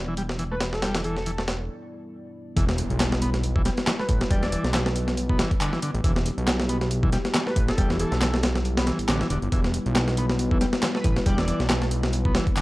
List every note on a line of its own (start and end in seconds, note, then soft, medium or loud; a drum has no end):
0.00 1.69 E1 medium
0.00 2.52 G3 medium
0.00 2.52 B3 medium
0.00 2.52 E4 medium
0.00 2.55 D5 medium
0.08 0.15 E3 loud
0.17 0.23 G3 medium
0.17 closed hi-hat medium
0.29 snare soft
0.39 0.44 E3 loud
0.39 closed hi-hat medium
0.52 0.55 A3 medium
0.52 0.62 B4 medium
0.61 snare loud
0.61 closed hi-hat medium
0.73 0.83 A4 medium
0.73 snare soft
0.82 0.94 G3 medium
0.82 snare loud
0.82 closed hi-hat medium
0.95 1.01 E3 loud
0.95 snare loud
0.95 closed hi-hat medium
1.04 1.16 E3 medium
1.04 1.38 A4 medium
1.04 closed hi-hat medium
1.17 snare soft
1.26 1.31 E3 loud
1.26 closed hi-hat medium
1.38 1.42 A3 medium
1.38 snare medium
1.48 snare loud
1.48 closed hi-hat medium
2.56 2.83 E1 loud
2.56 2.65 E3 medium
2.56 12.62 G3 medium
2.56 12.62 B3 medium
2.56 12.62 E4 medium
2.56 6.04 B4 loud
2.56 kick loud
2.56 closed hi-hat medium
2.56 closed hi-hat soft
2.56 impact medium
2.69 snare medium
2.69 closed hi-hat soft
2.78 closed hi-hat medium
2.90 3.70 B1 medium
2.90 closed hi-hat soft
3.00 snare loud
3.00 clap loud
3.00 closed hi-hat soft
3.00 closed hi-hat medium
3.12 snare medium
3.12 closed hi-hat soft
3.22 3.30 B3 medium
3.22 closed hi-hat medium
3.34 snare soft
3.34 closed hi-hat soft
3.43 closed hi-hat soft
3.43 closed hi-hat medium
3.56 3.62 E3 loud
3.56 kick loud
3.65 3.70 G3 medium
3.65 snare soft
3.65 closed hi-hat medium
3.77 snare medium
3.77 closed hi-hat soft
3.87 3.92 E3 loud
3.87 snare loud
3.87 clap loud
3.87 closed hi-hat soft
3.87 closed hi-hat medium
3.99 4.03 A3 medium
3.99 4.09 B4 medium
3.99 snare soft
4.09 4.23 A1 medium
4.09 kick medium
4.09 closed hi-hat medium
4.21 snare medium
4.21 closed hi-hat soft
4.30 4.57 E1 loud
4.30 4.42 G3 medium
4.30 4.65 D5 medium
4.30 kick loud
4.30 closed hi-hat soft
4.30 closed hi-hat medium
4.42 4.49 E3 loud
4.42 snare medium
4.42 closed hi-hat soft
4.52 4.64 E3 medium
4.52 closed hi-hat medium
4.64 5.44 B1 medium
4.64 snare soft
4.64 closed hi-hat soft
4.74 4.79 E3 loud
4.74 snare loud
4.74 clap loud
4.74 closed hi-hat soft
4.74 closed hi-hat medium
4.86 4.90 A3 medium
4.86 snare medium
4.86 closed hi-hat soft
4.96 closed hi-hat medium
5.08 snare medium
5.08 closed hi-hat soft
5.17 closed hi-hat medium
5.17 closed hi-hat soft
5.29 5.38 B3 medium
5.29 kick medium
5.39 5.51 E3 medium
5.39 snare loud
5.39 closed hi-hat medium
5.51 kick loud
5.51 closed hi-hat soft
5.61 5.72 D3 loud
5.61 clap loud
5.61 closed hi-hat medium
5.61 closed hi-hat soft
5.73 5.79 E3 loud
5.73 snare soft
5.82 5.91 D3 loud
5.82 closed hi-hat medium
5.94 6.01 A1 loud
5.94 closed hi-hat soft
6.04 6.31 E1 loud
6.04 6.12 E3 medium
6.04 9.51 G4 medium
6.04 kick loud
6.04 closed hi-hat soft
6.04 closed hi-hat medium
6.16 snare medium
6.16 closed hi-hat soft
6.26 closed hi-hat medium
6.38 7.18 B1 loud
6.38 closed hi-hat soft
6.48 snare loud
6.48 clap loud
6.48 closed hi-hat soft
6.48 closed hi-hat medium
6.60 snare medium
6.60 closed hi-hat soft
6.69 6.78 B3 medium
6.69 closed hi-hat medium
6.81 snare soft
6.81 closed hi-hat soft
6.91 closed hi-hat medium
6.91 closed hi-hat soft
7.03 7.10 E3 loud
7.03 kick loud
7.12 7.18 G3 medium
7.12 snare soft
7.12 closed hi-hat medium
7.25 snare medium
7.25 closed hi-hat soft
7.34 7.40 E3 loud
7.34 snare loud
7.34 clap loud
7.34 closed hi-hat medium
7.34 closed hi-hat soft
7.47 7.51 A3 medium
7.47 7.57 B4 medium
7.47 snare soft
7.56 7.71 A1 medium
7.56 kick medium
7.56 closed hi-hat medium
7.68 7.79 A4 medium
7.68 snare medium
7.68 closed hi-hat soft
7.78 8.05 E1 loud
7.78 7.90 G3 medium
7.78 kick loud
7.78 closed hi-hat soft
7.78 closed hi-hat medium
7.90 7.97 E3 loud
7.90 snare medium
7.90 closed hi-hat soft
8.00 8.12 E3 medium
8.00 8.34 A4 loud
8.00 closed hi-hat medium
8.12 8.92 B1 medium
8.12 snare soft
8.12 closed hi-hat soft
8.21 8.27 E3 loud
8.21 snare loud
8.21 clap loud
8.21 closed hi-hat soft
8.21 closed hi-hat medium
8.34 8.38 A3 medium
8.34 snare medium
8.34 closed hi-hat soft
8.43 snare loud
8.43 closed hi-hat medium
8.55 snare medium
8.55 closed hi-hat soft
8.65 closed hi-hat soft
8.65 closed hi-hat medium
8.77 8.86 B3 medium
8.77 snare loud
8.77 closed hi-hat medium
8.87 8.99 E3 medium
8.87 snare medium
8.87 closed hi-hat medium
8.99 9.07 A1 soft
8.99 closed hi-hat soft
8.99 closed hi-hat medium
9.09 9.23 A1 medium
9.09 9.20 D3 loud
9.09 snare loud
9.09 clap loud
9.09 closed hi-hat medium
9.09 closed hi-hat soft
9.21 9.27 E3 loud
9.21 snare soft
9.21 closed hi-hat soft
9.30 9.38 E1 medium
9.30 9.39 D3 loud
9.30 closed hi-hat medium
9.42 9.49 G1 loud
9.42 closed hi-hat soft
9.52 9.79 E1 loud
9.52 9.61 E3 medium
9.52 12.62 B4 medium
9.52 kick loud
9.52 closed hi-hat soft
9.52 closed hi-hat medium
9.64 snare medium
9.64 closed hi-hat soft
9.74 closed hi-hat medium
9.86 10.66 B1 medium
9.86 closed hi-hat soft
9.95 snare loud
9.95 clap loud
9.95 closed hi-hat medium
9.95 closed hi-hat soft
10.08 snare medium
10.08 closed hi-hat soft
10.17 10.26 B3 medium
10.17 closed hi-hat medium
10.30 snare soft
10.30 closed hi-hat soft
10.39 closed hi-hat medium
10.39 closed hi-hat soft
10.51 10.58 E3 loud
10.51 kick loud
10.61 10.66 G3 medium
10.61 snare soft
10.61 closed hi-hat medium
10.73 snare medium
10.73 closed hi-hat soft
10.83 10.88 E3 loud
10.83 snare loud
10.83 clap loud
10.83 closed hi-hat soft
10.83 closed hi-hat medium
10.95 10.99 A3 medium
10.95 11.05 B4 medium
10.95 snare soft
11.04 11.19 A1 medium
11.04 kick medium
11.04 closed hi-hat medium
11.16 snare medium
11.16 closed hi-hat soft
11.26 11.53 E1 loud
11.26 11.38 G3 medium
11.26 11.60 D5 medium
11.26 kick loud
11.26 closed hi-hat soft
11.26 closed hi-hat medium
11.38 11.45 E3 loud
11.38 snare medium
11.38 closed hi-hat soft
11.48 11.59 E3 medium
11.48 closed hi-hat medium
11.60 12.40 B1 medium
11.60 snare soft
11.60 closed hi-hat soft
11.70 11.75 E3 loud
11.70 snare loud
11.70 clap loud
11.70 closed hi-hat medium
11.70 closed hi-hat soft
11.82 11.86 A3 medium
11.82 snare medium
11.82 closed hi-hat soft
11.91 closed hi-hat medium
12.03 snare medium
12.03 closed hi-hat soft
12.13 closed hi-hat soft
12.13 closed hi-hat medium
12.25 12.34 B3 medium
12.25 kick loud
12.35 12.46 E3 medium
12.35 snare loud
12.35 closed hi-hat medium
12.47 kick loud
12.47 closed hi-hat soft
12.56 12.62 D3 loud
12.56 clap loud
12.56 closed hi-hat soft
12.56 closed hi-hat medium